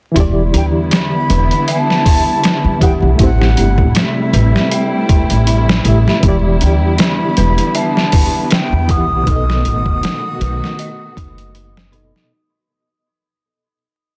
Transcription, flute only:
0.57 0.65 G5 medium
0.95 1.65 B5 medium
1.71 2.79 A5 loud
2.84 2.93 G5 medium
3.23 4.00 F#5 loud
3.99 4.75 E5 medium
4.74 5.49 G5 medium
6.63 6.98 G5 medium
7.01 7.79 B5 medium
7.77 8.51 A5 medium
8.52 8.92 G5 loud
8.90 11.94 D#6 loud

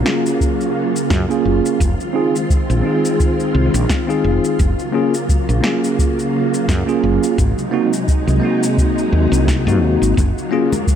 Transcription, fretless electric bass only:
1.10 1.24 F#2 medium
1.45 1.59 F#1 medium
1.80 1.94 F1 medium
2.70 2.80 A#1 medium
3.55 3.68 C2 medium
3.74 3.85 A#1 medium
4.24 4.38 F1 medium
4.59 4.73 F#1 medium
5.49 5.59 A#1 medium
6.69 6.82 F#2 loud
7.03 7.17 F#1 medium
7.38 7.52 G#1 loud
8.27 8.38 C2 medium
9.13 9.26 D#2 medium
9.32 9.68 C2 medium
9.67 9.82 G#2 medium
9.82 9.96 D#2 medium
10.02 10.13 G#1 medium
10.17 10.31 F#1 loud

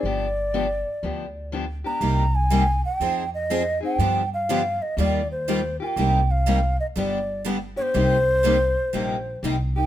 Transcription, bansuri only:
0.00 1.50 D5 medium
1.86 2.37 A#5 loud
2.35 2.84 G#5 loud
2.85 3.30 G5 loud
3.35 3.79 D#5 loud
3.85 4.29 G5 loud
4.34 4.84 F5 medium
4.82 4.98 D#5 medium
4.99 5.28 D5 medium
5.32 5.77 C5 medium
5.83 5.88 G#5 medium
5.87 6.32 G5 medium
6.31 6.79 F5 medium
6.80 6.86 D#5 medium
6.97 7.42 D5 medium
7.77 7.83 C#5 loud
7.82 9.39 C5 loud
9.77 9.86 G5 loud

